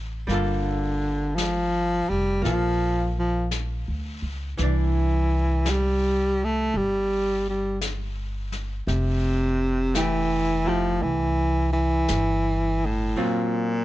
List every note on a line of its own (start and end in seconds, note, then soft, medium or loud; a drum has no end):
0.00 0.24 A1 medium
0.00 0.27 F#3 soft
0.00 0.28 C4 soft
0.00 0.29 D#4 soft
0.27 2.05 G1 medium
0.27 4.57 G3 soft
0.27 2.41 A#3 soft
0.27 brush sweep soft
0.27 snare soft
0.31 1.37 D3 medium
0.31 2.43 F4 soft
0.31 2.45 A4 medium
1.35 2.11 F3 medium
1.35 brush sweep soft
1.35 snare soft
1.35 hi-hat pedal medium
2.10 2.41 F1 medium
2.10 2.43 G3 medium
2.42 3.82 A#1 medium
2.42 3.13 F3 medium
2.42 4.57 A#3 soft
2.42 4.58 F4 soft
2.42 4.59 A4 soft
2.42 brush sweep soft
2.42 snare soft
3.19 3.49 F3 medium
3.51 brush sweep soft
3.51 snare soft
3.51 hi-hat pedal medium
3.88 4.20 D2 soft
4.22 4.55 C#2 medium
4.58 6.69 C2 medium
4.58 8.87 E3 soft
4.58 brush sweep soft
4.58 snare soft
4.62 5.72 E3 medium
4.62 8.89 D4 soft
5.65 brush sweep soft
5.65 snare soft
5.65 hi-hat pedal medium
5.71 6.46 G3 medium
6.44 6.78 A3 medium
6.74 8.83 G1 medium
6.74 7.48 G3 medium
6.74 brush sweep soft
7.50 7.79 G3 medium
7.81 brush sweep soft
7.81 snare soft
7.81 hi-hat pedal medium
8.52 snare soft
8.87 10.98 F1 medium
8.87 9.97 C3 medium
8.87 brush sweep soft
8.87 snare soft
9.94 10.70 E3 medium
9.94 10.63 A3 soft
9.94 10.65 E4 soft
9.94 10.66 G4 soft
9.94 brush sweep soft
9.94 snare soft
9.94 hi-hat pedal medium
10.65 11.04 F3 medium
10.65 13.16 A3 soft
10.65 13.17 E4 soft
10.65 13.17 G4 soft
11.01 12.05 C2 medium
11.01 11.72 E3 medium
11.01 brush sweep soft
11.73 12.87 E3 medium
12.08 13.13 G1 medium
12.08 brush sweep soft
12.08 snare soft
12.08 hi-hat pedal soft
12.86 13.22 A2 medium
13.17 13.85 A#2 medium
13.17 13.85 F#3 soft
13.17 13.85 C4 soft
13.17 13.85 F4 medium